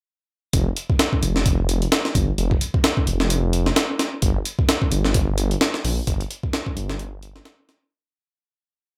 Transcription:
0.53 0.69 F1 loud
0.53 kick loud
0.53 closed hi-hat medium
0.77 closed hi-hat medium
0.90 kick medium
0.99 snare loud
0.99 closed hi-hat medium
1.13 kick medium
1.23 1.86 F1 medium
1.23 closed hi-hat medium
1.36 snare soft
1.46 kick loud
1.46 closed hi-hat medium
1.69 closed hi-hat medium
1.82 closed hi-hat soft
1.92 snare loud
1.92 closed hi-hat medium
2.05 snare soft
2.15 2.31 G1 medium
2.15 kick medium
2.15 closed hi-hat medium
2.38 2.54 F1 loud
2.38 closed hi-hat medium
2.51 kick medium
2.61 closed hi-hat medium
2.74 kick medium
2.84 snare loud
2.84 closed hi-hat medium
2.97 kick medium
3.07 3.71 F1 medium
3.07 closed hi-hat medium
3.20 snare medium
3.30 closed hi-hat medium
3.53 closed hi-hat medium
3.66 snare soft
3.76 snare loud
3.76 closed hi-hat medium
3.99 snare medium
3.99 closed hi-hat medium
4.22 4.38 G1 loud
4.22 kick loud
4.22 closed hi-hat medium
4.45 closed hi-hat medium
4.59 kick medium
4.69 snare loud
4.69 closed hi-hat medium
4.82 kick medium
4.92 5.55 G1 medium
4.92 closed hi-hat medium
5.05 snare soft
5.14 kick loud
5.14 closed hi-hat medium
5.38 closed hi-hat medium
5.51 closed hi-hat soft
5.61 snare loud
5.61 closed hi-hat medium
5.74 snare soft
5.84 6.00 A#1 medium
5.84 open hi-hat medium
6.07 6.23 G1 loud
6.07 kick loud
6.07 closed hi-hat medium
6.21 closed hi-hat soft
6.31 closed hi-hat medium
6.43 kick medium
6.53 snare loud
6.53 closed hi-hat medium
6.66 kick loud
6.76 7.40 G1 medium
6.76 closed hi-hat medium
6.90 snare medium
6.99 closed hi-hat medium
7.23 closed hi-hat medium
7.36 snare soft
7.45 snare loud
7.45 closed hi-hat medium
7.69 snare medium
7.69 closed hi-hat medium

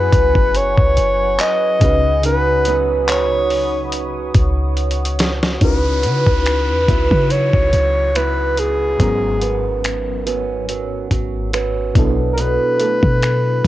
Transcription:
0.00 0.10 F#2 loud
0.00 1.77 F#3 medium
0.00 2.36 F#3 medium
0.00 2.27 B3 medium
0.00 1.77 C#4 medium
0.00 1.78 E4 medium
0.00 1.91 E4 medium
0.00 1.78 G#4 medium
0.00 2.69 G#4 medium
0.00 0.58 B4 medium
0.00 1.78 B4 medium
0.00 1.79 B4 medium
0.00 5.58 F#5 medium
0.00 1.78 G#5 medium
0.13 0.35 C#2 loud
0.13 kick loud
0.13 closed hi-hat medium
0.35 0.76 F#1 loud
0.35 kick loud
0.55 1.42 C#5 loud
0.55 closed hi-hat medium
0.78 0.96 C#2 loud
0.78 kick medium
0.97 1.38 F#1 loud
0.97 closed hi-hat medium
1.39 2.24 D#5 loud
1.39 clap loud
1.39 closed hi-hat medium
1.80 4.31 C#2 loud
1.80 5.15 C#3 medium
1.80 2.22 C#3 medium
1.80 5.15 C#4 medium
1.80 5.16 D#4 medium
1.80 5.16 F#4 medium
1.80 5.58 C#5 medium
1.80 3.49 B5 medium
1.80 5.58 D#6 medium
1.80 kick loud
1.80 closed hi-hat medium
1.85 5.17 B4 medium
2.23 5.60 C#3 medium
2.23 2.67 D#4 medium
2.23 2.79 B4 loud
2.23 closed hi-hat medium
2.65 6.16 F#3 medium
2.65 6.04 B3 medium
2.65 6.17 D#4 medium
2.65 closed hi-hat medium
3.08 3.89 C#5 medium
3.08 clap loud
3.08 closed hi-hat medium
3.50 5.60 C#6 medium
3.50 open hi-hat soft
3.92 closed hi-hat medium
4.35 5.58 C#2 loud
4.35 kick loud
4.35 closed hi-hat medium
4.77 closed hi-hat soft
4.91 closed hi-hat soft
5.05 closed hi-hat medium
5.19 snare loud
5.19 closed hi-hat medium
5.43 snare medium
5.60 6.06 C#2 loud
5.60 8.95 C#3 medium
5.60 9.00 C#3 medium
5.60 8.95 C#4 medium
5.60 8.96 D#4 medium
5.60 8.96 E4 medium
5.60 8.97 F#4 medium
5.60 7.33 B4 loud
5.60 kick loud
5.60 closed hi-hat medium
5.60 downlifter medium
5.65 8.97 B4 medium
6.03 6.26 C#3 loud
6.03 6.89 B3 medium
6.03 closed hi-hat medium
6.26 6.71 C#2 loud
6.26 kick medium
6.46 finger snap loud
6.46 closed hi-hat medium
6.70 6.88 E2 loud
6.88 7.10 C#2 loud
6.88 7.30 F#3 medium
6.88 8.15 B3 medium
6.88 8.15 E4 medium
6.88 kick medium
6.88 closed hi-hat medium
7.11 7.52 C#3 loud
7.11 kick medium
7.30 7.73 F#3 medium
7.30 8.18 C#5 loud
7.30 closed hi-hat medium
7.53 7.72 C#2 medium
7.53 kick medium
7.73 8.96 C#2 loud
7.73 8.15 F#3 medium
7.73 closed hi-hat medium
8.15 10.26 F#3 medium
8.15 9.41 B3 medium
8.15 9.09 E4 medium
8.15 8.60 B4 loud
8.15 finger snap loud
8.15 closed hi-hat medium
8.57 9.85 G#4 medium
8.57 closed hi-hat medium
8.98 11.07 G#1 loud
8.98 11.91 G#2 medium
8.98 11.95 G#2 medium
8.98 11.91 F#3 medium
8.98 11.92 B3 medium
8.98 11.92 C#4 medium
8.98 kick loud
8.98 closed hi-hat medium
9.03 11.93 A#4 medium
9.42 10.26 B3 medium
9.42 closed hi-hat medium
9.84 finger snap loud
9.84 closed hi-hat medium
10.26 10.68 F#3 medium
10.26 11.53 B3 medium
10.26 11.54 C#4 medium
10.26 closed hi-hat medium
10.68 11.11 F#3 medium
10.68 closed hi-hat medium
11.11 11.92 G#1 loud
11.11 11.53 F#3 medium
11.11 kick medium
11.11 closed hi-hat medium
11.53 13.64 F#3 medium
11.53 12.80 B3 medium
11.53 12.41 C#4 medium
11.53 finger snap loud
11.53 closed hi-hat medium
11.94 12.58 B1 loud
11.94 13.67 B2 medium
11.94 12.36 B2 medium
11.94 13.67 F#3 medium
11.94 13.67 B3 medium
11.94 13.67 D4 medium
11.94 13.67 E4 medium
11.94 kick loud
11.94 closed hi-hat medium
11.99 13.67 A4 medium
12.33 12.41 A#4 medium
12.38 13.67 B2 medium
12.38 13.67 B4 medium
12.38 closed hi-hat medium
12.80 13.65 A3 medium
12.80 closed hi-hat medium
13.03 13.62 B2 loud
13.03 kick medium
13.22 finger snap loud
13.22 closed hi-hat medium

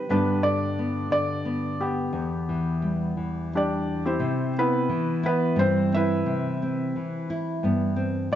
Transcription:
0.00 0.12 G4 medium
0.09 2.10 G2 medium
0.09 0.42 D3 medium
0.09 0.78 B3 medium
0.09 1.09 D4 medium
0.09 1.80 D4 medium
0.09 3.62 G4 medium
0.09 0.42 B4 medium
0.43 1.09 D3 soft
0.43 1.08 D5 medium
0.79 1.45 B3 soft
1.11 2.14 D3 medium
1.11 1.82 D5 medium
1.45 2.82 B3 soft
1.81 3.49 B3 soft
1.81 2.11 D4 soft
1.81 3.48 G4 medium
2.13 4.20 E2 medium
2.49 3.16 E3 medium
2.82 3.51 G3 soft
3.17 4.17 E3 soft
3.53 5.55 G3 soft
3.53 4.02 D4 soft
3.53 4.02 G4 soft
3.53 4.03 D5 medium
4.06 4.53 C4 soft
4.06 4.53 E4 soft
4.06 4.53 G4 soft
4.06 4.58 C5 medium
4.20 4.89 C3 medium
4.58 5.22 B3 medium
4.58 5.22 E4 medium
4.58 5.22 B4 medium
4.89 6.96 E3 medium
5.23 5.57 B3 medium
5.23 7.29 E4 medium
5.23 5.60 B4 medium
5.56 6.22 G2 medium
5.56 7.64 G3 medium
5.56 5.94 C5 medium
5.61 5.91 C4 medium
5.92 6.23 C4 medium
5.92 7.27 B4 medium
5.92 7.26 E5 medium
5.96 7.27 E4 medium
6.26 6.95 C3 medium
6.62 7.95 C4 medium
6.96 8.35 E3 medium
7.30 8.35 E4 medium
7.63 8.28 G2 medium
7.63 8.35 B3 medium
7.96 8.27 C4 medium
8.32 8.35 B2 medium

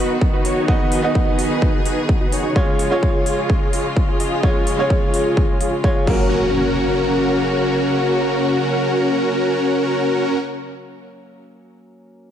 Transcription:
0.00 2.52 D#3 medium
0.00 0.68 B3 medium
0.00 2.52 B3 medium
0.00 0.11 D#4 medium
0.00 0.68 D#4 medium
0.00 0.11 F#4 medium
0.00 0.64 F#4 medium
0.00 0.69 F#4 medium
0.00 0.11 B4 loud
0.00 0.69 D#5 medium
0.21 kick loud
0.33 0.43 D#4 medium
0.33 0.43 F#4 medium
0.33 0.43 B4 medium
0.45 0.66 D#4 medium
0.45 0.66 F#4 medium
0.45 0.66 C#5 medium
0.45 open hi-hat medium
0.68 1.00 B3 medium
0.68 1.01 D#4 medium
0.68 1.01 F#4 medium
0.68 2.54 G#4 medium
0.68 1.01 B4 medium
0.68 1.01 D#5 medium
0.68 kick loud
0.92 open hi-hat loud
1.02 2.52 B3 medium
1.02 2.53 D#4 medium
1.02 1.48 D#4 medium
1.02 1.48 F#4 medium
1.02 2.53 F#4 medium
1.02 1.48 B4 medium
1.02 2.54 D#5 medium
1.15 kick loud
1.39 open hi-hat medium
1.50 1.83 D#4 medium
1.50 1.83 F#4 medium
1.50 1.83 B4 medium
1.62 kick loud
1.86 1.98 D#4 medium
1.86 1.98 F#4 medium
1.86 1.98 B4 loud
1.86 open hi-hat medium
2.09 kick loud
2.21 2.31 D#4 medium
2.21 2.31 F#4 medium
2.21 2.31 B4 medium
2.32 2.53 D#4 medium
2.32 2.53 F#4 medium
2.32 2.53 C#5 medium
2.32 open hi-hat medium
2.55 6.04 C#3 medium
2.55 2.88 G#3 medium
2.55 6.04 G#3 medium
2.55 2.88 C#4 medium
2.55 2.88 F4 medium
2.55 6.04 F4 medium
2.55 2.88 F4 medium
2.55 2.88 G#4 medium
2.55 2.88 C#5 medium
2.55 2.89 C#5 medium
2.55 kick loud
2.79 open hi-hat medium
2.90 4.40 G#3 medium
2.90 4.40 C#4 medium
2.90 3.35 F4 medium
2.90 4.41 F4 medium
2.90 3.35 G#4 medium
2.90 3.35 C#5 medium
2.90 4.41 C#5 medium
3.03 kick loud
3.26 open hi-hat medium
3.38 3.70 F4 medium
3.38 3.70 G#4 medium
3.38 3.70 C#5 medium
3.50 kick loud
3.73 3.86 F4 medium
3.73 3.86 G#4 medium
3.73 3.86 C#5 loud
3.73 open hi-hat medium
3.96 kick loud
4.08 4.18 F4 medium
4.08 4.18 G#4 medium
4.08 4.18 C#5 medium
4.20 4.41 F4 medium
4.20 4.41 G#4 medium
4.20 4.41 D#5 medium
4.20 open hi-hat medium
4.43 4.75 G#3 medium
4.43 4.76 C#4 medium
4.43 4.76 F4 medium
4.43 4.76 G#4 medium
4.43 4.76 C#5 medium
4.43 kick loud
4.67 open hi-hat medium
4.77 5.81 G#3 medium
4.77 5.81 C#4 medium
4.77 5.23 F4 medium
4.77 5.82 F4 medium
4.77 5.23 G#4 medium
4.77 5.23 C#5 medium
4.77 5.82 C#5 medium
4.90 kick loud
5.14 open hi-hat medium
5.25 5.58 F4 medium
5.25 5.58 G#4 medium
5.25 5.58 C#5 medium
5.37 kick loud
5.61 5.73 F4 medium
5.61 5.73 G#4 medium
5.61 5.73 C#5 medium
5.61 open hi-hat medium
5.83 6.07 G#3 medium
5.83 6.07 C#4 medium
5.83 6.08 F4 medium
5.83 6.08 C#5 medium
5.83 kick loud
5.96 6.06 F4 medium
5.96 6.06 G#4 medium
5.96 6.06 C#5 medium
6.06 10.38 C#3 medium
6.06 10.36 F#3 medium
6.06 10.38 A#3 medium
6.06 10.38 C#4 medium
6.06 10.39 C#4 medium
6.06 10.38 F#4 medium
6.06 10.38 A#4 medium
6.06 10.40 A#4 medium
6.06 kick loud
6.06 crash medium
6.06 impact medium

